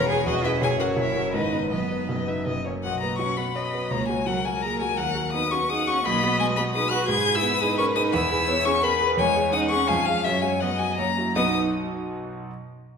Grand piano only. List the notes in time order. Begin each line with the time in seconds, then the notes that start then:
Already playing: E1 E2 C#4 G#4 B4
0.09 C#4 G#4 B4
0.27 E1 E2
0.45 C#4 G#4 B4
0.62 F#1 F#2
0.79 C#4 F#4 A#4
0.96 F#1 F#2
1.15 C#4 F#4 A#4
1.34 G#1 G#2
1.52 B3 D#4 B4
1.71 F#1 F#2
1.90 B3 D#4 B4
2.09 F#1 F#2
2.27 B3 D#4 B4
2.46 F#1 F#2
2.66 A#3 C#4 C#5
2.85 B1
3.02 B4
3.19 F#3
3.37 B4
3.56 C#5
3.74 B4
3.91 C#2
4.09 F#4
4.27 F#3
4.45 F#4
4.64 G#4
4.81 F#4
4.98 D#2
5.15 F#4
5.34 B3
5.52 F#4
5.70 G#4
5.88 F#4
6.05 B1
6.23 F#4
6.41 B3
6.58 F#4
6.74 G#4
6.91 F#4
7.08 G#2
7.26 G#4
7.43 B3
7.61 G#4
7.79 A#4
7.95 G#4
8.14 E2
8.30 G#4
8.48 B3
8.66 G#4
8.83 A#4
9.01 G#4
9.18 E2
9.35 G#4
9.53 C#4
9.71 G#4
9.89 F2
10.07 C#4 G#4
10.25 F#2
10.43 F#4
10.62 B3
10.80 F#4
10.99 F#2
11.18 E4 F#4
11.36 B1 B2 B3 D#4 F#4 D#5